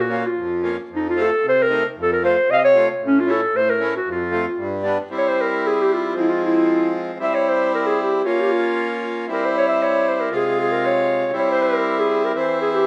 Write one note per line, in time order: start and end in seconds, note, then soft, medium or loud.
0.00 0.24 A#2 medium
0.00 0.28 F#4 medium
0.09 0.24 A#3 medium
0.09 0.24 C#4 soft
0.09 0.24 F4 medium
0.27 0.66 F4 medium
0.37 0.77 F2 medium
0.63 0.77 A#3 medium
0.63 0.77 C#4 soft
0.63 0.77 F4 medium
0.89 1.30 F2 medium
0.96 1.06 D#4 medium
1.10 1.23 F4 medium
1.16 1.30 A3 medium
1.16 1.30 C4 soft
1.16 1.30 F4 medium
1.22 1.46 A4 medium
1.43 1.83 C3 medium
1.48 1.64 C5 medium
1.62 1.86 A#4 loud
1.70 1.83 A3 medium
1.70 1.83 C4 soft
1.70 1.83 D#4 medium
1.96 2.36 F2 medium
2.02 2.12 A4 medium
2.13 2.24 A#4 medium
2.23 2.36 A3 medium
2.23 2.36 C4 medium
2.23 2.36 F4 medium
2.23 2.52 C5 medium
2.49 2.89 C3 medium
2.49 2.54 D#5 medium
2.49 2.60 F5 medium
2.58 2.64 D#5 medium
2.64 2.88 C#5 loud
2.75 2.89 A3 medium
2.75 2.89 C4 soft
2.75 2.88 F4 medium
3.01 3.41 A2 medium
3.01 3.21 C#4 medium
3.20 3.32 F4 medium
3.26 3.41 A3 soft
3.26 3.41 C#4 medium
3.26 3.41 E4 medium
3.31 3.58 A4 medium
3.54 3.93 A2 medium
3.54 3.71 C5 medium
3.70 3.95 A#4 medium
3.80 3.94 A3 medium
3.80 3.94 C#4 soft
3.80 3.94 E4 medium
3.97 4.08 F#4 medium
4.06 4.46 F2 medium
4.11 4.84 F4 medium
4.31 4.45 A3 medium
4.31 4.46 C4 soft
4.31 4.46 F4 medium
4.57 4.97 G2 medium
4.83 4.98 G3 medium
4.83 4.98 B3 medium
4.83 4.98 D4 medium
5.10 6.14 G3 medium
5.10 6.13 C4 soft
5.10 6.14 E4 medium
5.18 5.30 C#5 medium
5.28 5.43 C5 medium
5.41 5.68 A#4 medium
5.67 5.83 G#4 medium
5.81 5.95 G4 medium
5.93 6.17 F4 medium
6.15 7.18 F3 medium
6.15 7.18 G#3 medium
6.15 7.18 C4 medium
6.15 6.31 E4 medium
6.29 6.43 F4 medium
6.44 6.92 E4 medium
7.19 8.22 G3 medium
7.19 8.22 C4 medium
7.19 8.22 E4 medium
7.19 7.36 E5 medium
7.34 7.51 C#5 medium
7.49 7.74 C5 medium
7.74 7.88 A#4 medium
7.86 7.99 G#4 medium
8.02 8.28 G4 medium
8.24 9.26 A#3 medium
8.24 9.26 C#4 soft
8.24 9.27 F4 medium
8.24 8.42 F4 medium
8.40 8.53 G4 medium
8.52 9.03 F4 medium
9.28 10.29 G3 medium
9.28 10.29 C4 medium
9.28 10.29 E4 medium
9.28 9.47 A#4 medium
9.45 9.56 C5 medium
9.57 9.67 C#5 medium
9.68 9.83 E5 medium
9.82 10.10 C#5 medium
10.08 10.22 C5 medium
10.20 10.32 A#4 medium
10.30 11.31 C3 medium
10.30 11.31 G#3 medium
10.30 11.31 F4 medium
10.35 10.57 G#4 medium
10.60 10.73 G#4 medium
10.72 10.87 A#4 medium
10.85 11.35 C#5 medium
11.32 12.33 G3 medium
11.32 12.32 C4 medium
11.32 12.33 E4 medium
11.38 11.48 C#5 medium
11.51 11.64 C5 medium
11.63 12.01 A#4 medium
11.99 12.26 G#4 medium
12.25 12.38 A#4 medium
12.35 12.87 E3 medium
12.35 12.87 C4 soft
12.35 12.87 E4 medium
12.35 12.60 C5 medium
12.61 12.71 G#4 medium
12.71 12.85 G4 medium
12.71 12.76 G#4 soft